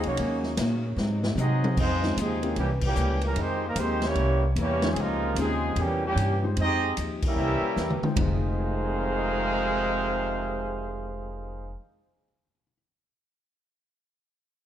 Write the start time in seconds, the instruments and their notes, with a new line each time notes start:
Already playing: saxophone section C3 F3 D#4 G#4
0.03 upright bass C2, trombone section F#3 A#3 C#4, trumpet section A#3 D#4 F#4 C#5, ride
0.17 upright bass D#2, saxophone section C#3 F#3 A#3, steel-string acoustic guitar D#3 A#3 C#4, ride
0.21 steel-string acoustic guitar F#4
0.43 snare
0.57 upright bass A#2, steel-string acoustic guitar D#3 A#3 C#4 F#4, snare, hi-hat pedal, ride
0.96 steel-string acoustic guitar G#2 F#3 C4 D#4, upright bass G#2, saxophone section C3 G#3, snare
1.24 snare
1.35 steel-string acoustic guitar G#2 F#3 C4 D#4, upright bass C3, trombone section C4 D#4, hi-hat pedal, high tom
1.40 trombone section F#3, trumpet section C4 F#4 G#4 D#5
1.64 high tom
1.76 upright bass F2, steel-string acoustic guitar C#3 F3 C4 D#4, trombone section F3 G#3 C4, trumpet section G#3 D#4 F4 C5, kick, crash
2.02 upright piano G#3 C4 C#4 D#4 F4, snare
2.17 upright bass D#2, steel-string acoustic guitar C#3 F3 C4 D#4, trumpet section C4 D#4 G#4, hi-hat pedal, ride
2.21 trombone section C3 F3 G#3
2.42 upright piano A#3 C4 C#4 E4 G4, ride
2.56 upright bass C2, trombone section A#2 G3, steel-string acoustic guitar C3 E3 A#3, trumpet section A#3 C#4 G4, ride
2.60 trombone section E3, steel-string acoustic guitar C#4
2.81 kick, crash
2.86 trombone section A#2 E3 G3, trumpet section A#3 C#4 G4
2.95 upright bass C#2, steel-string acoustic guitar C3 E3 A#3 C#4, hi-hat pedal
3.21 trombone section E3 A#3, trumpet section G3, ride
3.26 trombone section G3, trumpet section C#4 E4 A#4
3.36 upright bass F2, trombone section D#3 G#3 C4, steel-string acoustic guitar F3 G#3 D#4, ride
3.40 trumpet section G#3 D#4 G4 C5, steel-string acoustic guitar G4
3.67 trumpet section G3 C4 D#4 A#4, trombone section A#3
3.76 upright bass D#2, trombone section D#3 G#3, steel-string acoustic guitar F3 G#3 D#4 G4, hi-hat pedal, ride
3.80 trumpet section G#3 D#4 G4 C5, trombone section C4
4.01 snare, ride
4.06 trombone section G3 A#3 C#4, trumpet section A#3 E4 G4 C#5
4.15 upright bass C2, steel-string acoustic guitar C3 E3 A#3 C#4, ride
4.56 upright bass E2, steel-string acoustic guitar C3 E3 A#3 C#4, trumpet section A#3 E4, hi-hat pedal, ride
4.60 trombone section G3 A#3 C#4, trumpet section G4 C#5
4.82 upright piano G#3 C#4 D#4 F4 C5, snare, ride
4.92 upright bass C#2, trumpet section G#4
4.96 steel-string acoustic guitar C#3 F3 C4, trumpet section G#3 D#4 F4 A#4, ride
5.00 trombone section C3 F3 A#3, steel-string acoustic guitar D#4
5.35 upright bass D#2, steel-string acoustic guitar C#3 F3, upright piano C#3 G#3 D#4 F4 C5, hi-hat pedal, ride
5.39 trombone section C3 F3 G#3, steel-string acoustic guitar C4 D#4, trumpet section C4 D#4 G#4
5.76 upright bass E2, steel-string acoustic guitar C3 E3, trumpet section A#3 C#4 G4, ride
5.80 trombone section A#2 E3 G3, steel-string acoustic guitar A#3 C#4
6.06 trombone section A#2 E3 G3, trumpet section A#3 C#4 G4
6.16 upright bass G2, steel-string acoustic guitar C3 E3 A#3, hi-hat pedal, ride
6.20 steel-string acoustic guitar C#4
6.42 upright piano G#3 D#4 F4 G4 C5
6.57 upright bass F2, steel-string acoustic guitar F3 G#3 D#4 G4, trombone section G#3 C4, trumpet section G#4, ride
6.61 trumpet section C4 G4 D#5, trombone section D#4
6.97 upright bass D#2, steel-string acoustic guitar F3 G#3 D#4, hi-hat pedal, ride
7.01 steel-string acoustic guitar G4
7.22 kick, crash
7.26 trombone section G3 A#3 E4, trumpet section C#4 G4 A#4 E5
7.36 upright bass C2, steel-string acoustic guitar C3 E3
7.41 steel-string acoustic guitar A#3 C#4
7.61 muted upright bass stroke
7.76 upright bass E2, steel-string acoustic guitar C3 E3 A#3 C#4, snare, hi-hat pedal
7.90 mid tom
8.02 upright piano G#3 D#4 F4 C5 G5, muted upright bass stroke, mid tom
8.13 upright bass F1, upright piano F2 F3, steel-string acoustic guitar F3, kick, floor tom, ride bell
8.17 trombone section F2 C3 D#3 G#3, steel-string acoustic guitar G#3 D#4, trumpet section D#4 G#4 C5 F5, upright piano D#4
8.25 upright piano G#4
8.59 upright piano C5
8.66 upright piano F5
8.75 upright piano G#5
8.84 upright piano C6
8.94 upright piano F6
9.04 upright piano G#6
9.17 upright piano C7